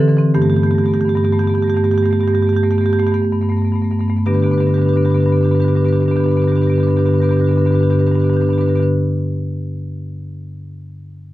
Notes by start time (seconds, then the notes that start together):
Already playing: A4
0.00 D3 E3 C4
0.08 D3 E3 C4
0.17 D3 E3 C4
0.34 G2 A3 B3 G4
0.42 G2 A3 B3 G4
0.50 A3 B3 G4
0.55 G2 G4
0.59 A3 B3
0.63 G2 A3 G4
0.71 G2 B3 G4
0.75 A3 G4
0.80 B3
0.84 G2 A3 G4
0.88 A3 B3
0.94 G2 B3 G4
1.00 A3 G4
1.05 G2 A3 B3
1.09 G4
1.14 G2 A3 B3 G4
1.24 G2 A3 B3 G4
1.32 G2 A3 B3 G4
1.39 A3 B3 G4
1.43 G2 G4
1.49 A3 B3
1.54 G2 B3 G4
1.58 A3
1.62 G2 G4
1.67 A3 B3 G4
1.74 G2 A3 B3 G4
1.83 G2 A3 B3 G4
1.91 G2 A3 B3 G4
1.98 G4
2.02 G2 A3 B3 G4
2.10 G2 A3 B3 G4
2.20 G2 A3 B3 G4
2.27 A3 B3 G4
2.33 G2 A3 G4
2.38 B3
2.42 G2 A3 G4
2.47 B3 G4
2.53 G2 A3 B3 G4
2.63 G2 A3 B3 G4
2.71 G2 A3 B3 G4
2.78 A3 B3 G4
2.83 G2 G4
2.89 A3 B3 G4
2.93 G2
2.98 A3 B3 G4
3.02 G2 B3
3.07 A3 G4
3.12 G2 B3 G4
3.16 A3
3.22 G2 A3 B3
3.32 G2 A3 B3
3.41 G2 A3 B3
3.49 G2 A3 B3
3.57 A3 B3
3.62 G2 B3
3.67 A3
3.72 G2 A3 B3
3.82 G2 A3 B3
3.91 G2 A3 B3
3.99 G2 A3 B3
4.08 G2 A3 B3
4.17 A3 B3
4.26 G2 D3 B3 D4 G4 B4
4.33 G2 D3 B3 D4 G4 B4
4.40 B3 D4 G4 B4
4.45 G2 D3 B4
4.51 D3 B3 D4 G4 B4
4.58 G2 B3 D4 G4 B4
4.62 D3
4.67 G2 D3 B3 D4 G4 B4
4.74 G2 D4 G4 B4
4.78 D3 B3 G4 B4
4.85 G2 D3 B3 D4 G4 B4
4.93 G2 D3 B3 D4 G4 B4
5.01 D3 D4 G4 B4
5.06 G2 B3 B4
5.10 D3 B3 D4 G4
5.15 G2 D4 B4
5.20 D3 B3 G4 B4
5.25 G2 D3 D4 G4 B4
5.32 G2 B3 D4 B4
5.37 D3 B3 G4
5.43 G2 D3 D4 G4 B4
5.49 B3 D4 G4 B4
5.55 G2 D3 B4
5.60 B3 D4 G4 B4
5.64 G2 D3 G4
5.68 B3 D4 B4
5.73 G2 D3 B3 D4 G4 B4
5.81 D3 D4 G4 B4
5.86 G2 B3 B4
5.90 D3 B3 D4 G4
5.96 G2 D3 B4
6.00 B3 D4 G4 B4
6.06 G2 D3 D4 G4
6.10 B3 B4
6.16 G2 D3 D4 G4 B4
6.20 B3 D4 G4 B4
6.26 G2 D3 B3
6.30 D4 G4 B4
6.35 G2 D3 B3 B4
6.39 D4 G4 B4
6.44 G2 D3 B3
6.48 D4 G4 B4
6.52 D3 B3 G4 B4
6.57 G2 D4
6.61 D3 B3 D4 G4 B4
6.67 G2 B3 B4
6.72 D3 D4 G4 B4
6.78 G2 D3 B3 G4
6.83 B3 D4 B4
6.88 G2 D3 D4 G4 B4
6.96 G2 D3 B3 D4 G4 B4
7.04 D3 B3 D4 G4 B4
7.09 G2 B4
7.14 D3 B3 D4 G4
7.18 G2 G4 B4
7.23 D3 B3 D4 B4
7.29 G2 D3 B3 D4 G4 B4
7.37 B3 D4 G4 B4
7.41 G2 D3 G4
7.46 D3 B3 D4 B4
7.51 G2 G4 B4
7.56 D3 B3 D4 B4
7.60 G2 G4
7.65 D3 B3 D4 G4 B4
7.70 G2 D4 B4
7.74 D3 B3 G4
7.79 G2 B3 D4 G4 B4
7.84 D3 B4
7.90 G2 D3 B3 D4 G4 B4
7.99 G2 D3 B3 D4 G4 B4
8.06 D3 B3 D4 G4 B4
8.11 G2 D4 G4 B4
8.16 D3 B3
8.20 G2 G4 B4
8.24 D3 B3 D4 B4
8.30 G2 B3 D4 G4
8.34 D3 G4 B4
8.40 G2 D3 B3 D4 B4
8.45 G4 B4
8.49 G2 D3 B3 D4
8.53 G4 B4
8.58 G2 B3 D4 G4 B4
8.62 D3 D4
8.68 G2 D3 B3 G4 B4
8.75 B3 D4 G4 B4
8.80 G2 D3 D4 B4